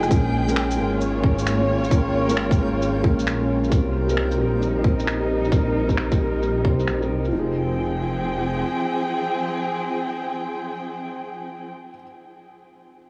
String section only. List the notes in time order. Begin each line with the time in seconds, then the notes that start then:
Already playing: F3 C4 G#4 G5
0.11 A#3
0.34 F4
0.98 C#5
3.90 A#4
3.97 D#4
7.33 F3
7.41 C4
7.48 G5
7.53 G#4